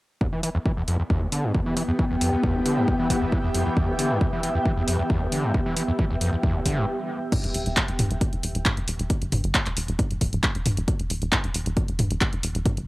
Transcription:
0.21 E2 E3 B3, kick
0.33 E3
0.43 E3, open hi-hat
0.55 E2
0.66 E3 G4, kick
0.75 E2 G5
0.88 F2, open hi-hat
0.99 E2
1.10 E2, kick
1.22 D2 E5
1.32 D3, open hi-hat
1.44 G2
1.54 E2, kick
1.66 E3
1.77 E3, open hi-hat
1.88 E2
1.99 E3, kick
2.10 E2
2.21 F2, open hi-hat
2.33 E2
2.43 E2, kick
2.55 D2
2.65 D3, open hi-hat
2.77 G2
2.88 E2, kick
2.99 E3
3.10 E3, kick, open hi-hat
3.22 E2
3.32 E3, kick
3.44 E2
3.54 F2, open hi-hat
3.66 E2
3.77 E2, kick
3.88 D2
3.99 D3, open hi-hat
4.11 G2
4.21 E2, kick
4.33 E3
4.43 E3, open hi-hat
4.55 E2
4.66 E3, kick
4.77 E2
4.88 F2, open hi-hat
4.99 E2
5.10 E2, kick
5.22 D2
5.32 D3, open hi-hat
5.44 G2
5.54 E2, kick
5.66 E3
5.77 E3, open hi-hat
5.88 E2
5.99 E3, kick
6.11 E2
6.21 F2, open hi-hat
6.33 E2
6.43 E2, kick
6.55 D2
6.66 D3, kick, open hi-hat
6.77 G2
7.32 kick, closed hi-hat, mid tom, crash
7.44 E1, closed hi-hat
7.54 E1, open hi-hat
7.66 E1, closed hi-hat
7.77 kick, clap, closed hi-hat
7.88 E1, closed hi-hat
7.99 E1, mid tom, open hi-hat
8.11 E1, closed hi-hat
8.21 kick, closed hi-hat
8.33 E1, closed hi-hat
8.43 E1, open hi-hat
8.55 E1, closed hi-hat
8.66 kick, clap, closed hi-hat, mid tom
8.77 E1, closed hi-hat
8.88 E1, open hi-hat
8.99 E1, closed hi-hat
9.10 kick, closed hi-hat
9.22 G1, closed hi-hat
9.32 G1, mid tom, open hi-hat
9.44 G1, closed hi-hat
9.54 kick, clap, closed hi-hat
9.66 E1, clap, closed hi-hat
9.77 E1, open hi-hat
9.88 E1, closed hi-hat
9.99 kick, closed hi-hat, mid tom
10.11 D1, closed hi-hat
10.21 D1, kick, open hi-hat
10.33 D1, closed hi-hat
10.43 kick, clap, closed hi-hat
10.55 E1, closed hi-hat
10.66 E1, mid tom, open hi-hat
10.77 E1, closed hi-hat
10.88 kick, closed hi-hat
10.99 E1, closed hi-hat
11.10 E1, open hi-hat
11.22 E1, closed hi-hat
11.32 kick, clap, closed hi-hat, mid tom
11.44 E1, closed hi-hat
11.54 E1, open hi-hat
11.66 E1, closed hi-hat
11.77 kick, closed hi-hat
11.88 E1, closed hi-hat
11.99 E1, mid tom, open hi-hat
12.11 E1, closed hi-hat
12.21 kick, clap, closed hi-hat
12.33 E1, closed hi-hat
12.43 E1, open hi-hat
12.55 E1, closed hi-hat
12.66 kick, closed hi-hat, mid tom
12.77 G1, closed hi-hat

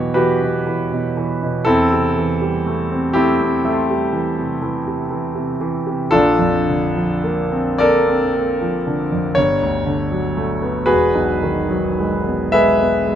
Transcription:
Already playing: E2 B2 E3 F#3 B3 F#4 G4 C#5
0.14 E3 F#4 G4 B4
0.42 B2
0.67 E3
0.92 B2
1.17 E3
1.43 B2
1.65 E2 C4 E4 A4
1.93 C3
2.18 E3
2.42 G3
2.66 A3
2.92 C4
3.13 A3 C4 E4 G4
3.42 C4
3.65 A3 E5
3.69 G5 A5
3.74 C6
3.91 G3
4.13 E3
4.38 C3
4.62 E3
4.88 C3
5.10 E3
5.35 C3
5.61 E3
5.87 C3
6.11 A#1 D4 F4 A4
6.39 F2
6.68 D3
6.96 F3
7.24 A#3
7.52 C4
7.78 A#3 A4 A#4 D5
8.07 C4
8.35 A#3
8.61 F3
8.87 D3
9.12 F2
9.35 G1 C#5
9.63 D2
9.86 D3
10.12 F#3
10.37 A3
10.62 B3
10.86 E1 F#4 G#4 B4
11.15 B1
11.43 D#3
11.70 F#3
12.00 G#3
12.26 B3
12.52 G#3 G#4 B4 E5
12.80 B3
13.07 G#3

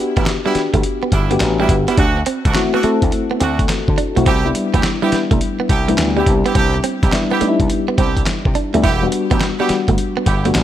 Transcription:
Already playing: B3 D4 F#4 G4
0.16 A1 G3 B3 D4 E4, kick, closed hi-hat
0.26 snare, clap, closed hi-hat
0.45 G3 B3 D4 E4 F#4 G4
0.55 muted clean electric guitar stroke, muted slap bass stroke, snare, closed hi-hat
0.74 G1 A3, kick, closed hi-hat
0.83 closed hi-hat
1.03 B3
1.12 G1 G3 B3 D4 E4, muted clean electric guitar stroke, kick, closed hi-hat
1.31 A3 B3 D4 F#4 G4, closed hi-hat
1.40 A1, snare, clap, closed hi-hat
1.59 G3 B3 D4 E4 F#4 G4
1.69 G1, muted clean electric guitar stroke, kick, closed hi-hat
1.88 G3 B3 D4 E4, closed hi-hat
1.97 D2 A3 C4 D4 F#4, kick, closed hi-hat
2.17 muted clean electric guitar stroke
2.26 C4, closed hi-hat
2.45 C2 A3 C4 D4 F#4, kick, closed hi-hat
2.55 A3 C4 E4 F#4, muted clean electric guitar stroke, snare, clap, closed hi-hat
2.73 A3 B3 C4 D4 F#4
2.83 A3 C4 E4 A4, muted slap bass stroke, closed hi-hat
3.02 D2, kick, closed hi-hat
3.12 muted clean electric guitar stroke, closed hi-hat
3.31 B3
3.40 D2 A3 C4 D4 F#4, closed hi-hat
3.59 kick, closed hi-hat
3.69 muted clean electric guitar stroke, snare, clap, closed hi-hat
3.88 D3, kick
3.98 D4, closed hi-hat
4.16 B1 A3 C4 E4 F#4, closed hi-hat
4.26 C2 B3 C4 E4 G4, kick, closed hi-hat
4.45 G3 B3 D4 E4
4.55 muted clean electric guitar stroke, closed hi-hat
4.74 D2 B3 C4 E4 G4, kick, closed hi-hat
4.83 snare, clap, closed hi-hat
5.02 G3 B3 C4 D4 E4 G4
5.12 muted clean electric guitar stroke, muted slap bass stroke, snare, closed hi-hat
5.31 C2 A3, kick, closed hi-hat
5.41 closed hi-hat
5.60 B3
5.69 C2 B3 C4 E4 G4, muted clean electric guitar stroke, kick, closed hi-hat
5.88 G3 A3 B3 D4 E4, closed hi-hat
5.98 D2, snare, clap, closed hi-hat
6.17 G3 B3 C4 D4 E4 G4
6.26 C2, muted clean electric guitar stroke, kick, closed hi-hat
6.45 B3 C4 E4 G4, closed hi-hat
6.55 C2 B3 C4 E4 G4, kick, closed hi-hat
6.74 muted clean electric guitar stroke
6.84 C4, closed hi-hat
7.03 B1 B3 C4 E4 G4, kick, closed hi-hat
7.12 G3 B3 D4 E4, muted clean electric guitar stroke, snare, clap, closed hi-hat
7.31 B3 C4 E4 G4
7.41 G3 A3 B3 D4 D#4, muted slap bass stroke, closed hi-hat
7.49 E4
7.60 C2, kick, closed hi-hat
7.70 muted clean electric guitar stroke, closed hi-hat
7.88 B3
7.98 C2 B3 C4 E4 G4, kick, closed hi-hat
8.17 kick, closed hi-hat
8.26 muted clean electric guitar stroke, snare, clap, closed hi-hat
8.45 C3, kick
8.55 D4, closed hi-hat
8.74 D2 G3 A3 B3 D4 E4, closed hi-hat
8.83 E1 B3 D4 E4 G4, kick, closed hi-hat
9.02 G3 B3 D4 F#4
9.12 muted clean electric guitar stroke, closed hi-hat
9.31 A1 B3 D4 E4 G4, kick, closed hi-hat
9.41 snare, clap, closed hi-hat
9.59 G3 B3 D4 E4 F#4 G4
9.69 muted clean electric guitar stroke, muted slap bass stroke, snare, closed hi-hat
9.88 G1 A3, kick, closed hi-hat
9.98 closed hi-hat
10.17 B3
10.26 G1 B3 D4 E4 G4, muted clean electric guitar stroke, kick, closed hi-hat
10.45 G3 A3 B3 D4 F#4, closed hi-hat
10.55 A1, snare, clap, closed hi-hat

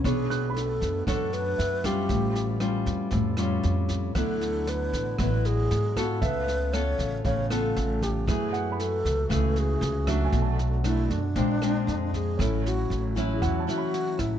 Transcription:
Already playing: B2
0.04 B1 A3 B3 D4 G#4 C#5, kick, cross-stick, snare
0.30 F#6, snare
0.50 B5
0.55 A4, snare
0.81 F#2, kick, snare
1.07 F#2 F#3 D4 A4 C#5, kick, cross-stick, snare
1.33 B4, snare
1.58 F#2 E5, snare
1.84 G3 C#4 F4 G4, kick, cross-stick, snare
2.09 A1 A2 G3 F4, kick, snare
2.35 snare
2.60 G3 C#4 F4, cross-stick, snare
2.86 F2, kick, snare
3.11 F2 A2, kick, snare
3.37 G3 C#4 F4 C#5, cross-stick, snare
3.63 F2, snare
3.89 kick, snare
4.14 D2 D3 F#3 B3 E4 A4, kick, cross-stick, snare
4.41 snare
4.67 B4, snare
4.93 A1, kick, snare
5.19 A1 F#3 B3 E4 B4, kick, cross-stick, snare
5.45 G#4, snare
5.71 G#2, snare
5.96 B3 F4 F#4 A4, kick, cross-stick, snare
6.22 C#2 C#3 A3 F4 B4 E5, kick, snare
6.48 snare
6.73 B3 F4 A4 C#5, cross-stick, snare
6.99 A1, kick, snare
7.25 A1 C#3 C#5 F5, kick, snare
7.50 B3 F4 A4, cross-stick, snare
7.76 A1, snare
8.02 G4, kick, snare
8.27 F#2 E3 F#3 A3 E4 F#4 G#4, kick, cross-stick, snare
8.53 F#5, snare
8.72 B5
8.80 A4, snare
9.05 C#2, kick, snare
9.29 C#2 C#3 A3 E4 G#4 A4, kick, cross-stick, snare
9.56 G#4, snare
9.81 C#2, snare
10.07 F#3 A3 D4 F#4 E5, kick, cross-stick, snare
10.25 G#5
10.32 B1 B2 D3 B3, kick, snare
10.42 A5
10.59 snare
10.84 F#3 A3 D4 E4, cross-stick, snare
11.10 F#2 D4, kick, snare
11.36 A#1 A#2 C3 G#3 A#3 C4 D4, kick, snare
11.61 G#3 C4 D4, cross-stick, snare
11.87 F2, snare
12.13 G#4, kick, snare
12.37 A1 A2 C#3 F#3 A3 C#4 E4 A4 C#5, kick, cross-stick, snare
12.66 F#4, snare
12.90 A1, snare
13.16 F#3 C#4 E4, kick, snare
13.36 G#4
13.42 E2 E3 F#4 F#5, kick, cross-stick, snare
13.60 A5
13.67 F#3 C#4 E4 F#4, snare
13.78 B5
13.94 snare
14.19 A1 E4, kick, cross-stick, snare

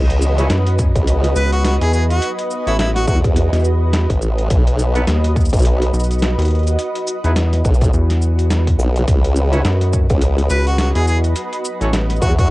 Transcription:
Already playing: C#2 F#4 B4 D#5
0.10 closed hi-hat, shaker
0.22 shaker
0.38 C#4 D#4 E4 B4 C#5, closed hi-hat, shaker
0.50 F#2, snare, closed hi-hat, shaker
0.67 snare, closed hi-hat, shaker
0.79 kick, shaker
0.96 C#2, kick, closed hi-hat, shaker
1.07 closed hi-hat, shaker
1.24 closed hi-hat, shaker
1.36 C#2 B4, shaker
1.52 F#4, closed hi-hat, shaker
1.64 F#4, snare, closed hi-hat, shaker
1.81 E2 G#4, closed hi-hat, shaker
1.93 G#4, shaker
2.10 F#4, closed hi-hat, shaker
2.22 closed hi-hat, shaker
2.39 closed hi-hat, shaker
2.51 shaker
2.67 A1 C#4 E4 F#4 A4 C#5, closed hi-hat, shaker
2.79 E4, snare, closed hi-hat, shaker
2.96 F#4, snare, closed hi-hat, shaker
3.07 E2 F#4, kick, shaker
3.24 kick, closed hi-hat, shaker
3.36 closed hi-hat, shaker
3.53 E2, snare, closed hi-hat, shaker
3.55 shaker
3.59 shaker
3.61 shaker
3.63 shaker
3.64 shaker
3.93 snare, closed hi-hat, shaker
4.10 A1, kick, closed hi-hat, shaker
4.22 shaker
4.38 closed hi-hat
4.50 B1, kick, closed hi-hat, shaker
4.67 closed hi-hat, shaker
4.79 shaker
4.95 B3 C#4 D#4 A4 B4, closed hi-hat, shaker
5.07 D#2, snare, closed hi-hat, shaker
5.24 snare, closed hi-hat, shaker
5.36 kick, shaker
5.40 shaker
5.45 shaker
5.49 B1, kick, shaker
5.53 closed hi-hat, shaker
5.56 shaker
5.59 shaker
5.62 closed hi-hat, shaker
5.82 closed hi-hat, shaker
5.93 B1, shaker
6.00 shaker
6.04 shaker
6.11 closed hi-hat, shaker
6.13 shaker
6.19 snare, closed hi-hat, shaker
6.22 shaker
6.38 D#2, closed hi-hat
6.42 closed hi-hat
6.45 closed hi-hat, shaker
6.48 closed hi-hat
6.51 closed hi-hat
6.55 closed hi-hat
6.59 closed hi-hat
6.63 closed hi-hat
6.67 closed hi-hat, shaker
6.79 F#4, closed hi-hat, shaker
6.95 closed hi-hat, shaker
7.07 shaker
7.24 E2 B3 D#4 E4 G#4 B4, closed hi-hat, shaker
7.36 snare, closed hi-hat, shaker
7.53 snare, closed hi-hat, shaker
7.65 B1, kick, shaker
7.74 shaker
7.81 D#5, kick, closed hi-hat, shaker
7.84 shaker
7.93 E2, shaker
8.10 snare, closed hi-hat, shaker
8.22 shaker
8.39 closed hi-hat, shaker
8.50 snare, closed hi-hat, shaker
8.67 kick, closed hi-hat
8.79 B1, shaker
8.96 closed hi-hat, shaker
9.08 C#2, kick, closed hi-hat, shaker
9.24 closed hi-hat, shaker
9.36 shaker
9.53 C#4 D#4 E4 B4 C#5, closed hi-hat, shaker
9.65 F#2, snare, closed hi-hat, shaker
9.81 snare, closed hi-hat, shaker
9.93 kick, shaker
10.10 C#2, kick, closed hi-hat, shaker
10.21 closed hi-hat, shaker
10.38 closed hi-hat, shaker
10.50 C#2 B4, shaker
10.67 F#4, closed hi-hat, shaker
10.78 F#4, snare, closed hi-hat, shaker
10.95 E2 G#4, closed hi-hat, shaker
11.07 G#4, shaker
11.24 closed hi-hat, shaker
11.36 closed hi-hat, shaker
11.53 closed hi-hat, shaker
11.65 shaker
11.81 A1 C#4 E4 F#4 A4 C#5, closed hi-hat, shaker
11.93 snare, closed hi-hat, shaker
12.10 snare, closed hi-hat, shaker
12.16 shaker
12.22 E2 F#4, kick, shaker
12.30 shaker
12.38 F#4, kick, closed hi-hat, shaker

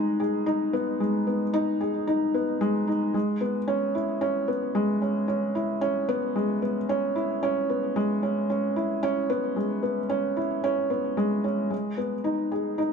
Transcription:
Already playing: G#3 B3 D#4 G#4
0.20 G#4
0.46 D#4
0.73 B3
1.00 G#3
1.27 B3
1.54 D#4
1.81 G#4
2.07 D#4
2.34 B3
2.61 G#3
2.87 D#4
3.14 G#3
3.41 B3
3.68 C#4
3.95 E4
4.21 C#4
4.48 B3
4.75 G#3
5.02 C#4
5.28 C#4
5.55 E4
5.81 C#4
6.09 B3
6.36 G#3
6.62 B3
6.89 C#4
7.16 E4
7.43 C#4
7.70 B3
7.96 G#3
8.23 C#4
8.50 C#4
8.76 E4
9.03 C#4
9.30 B3
9.56 G#3
9.83 B3
10.09 C#4
10.37 E4
10.64 C#4
10.90 B3
11.17 G#3
11.44 C#4
11.71 G#3
11.98 B3
12.24 D#4
12.52 G#4
12.78 D#4

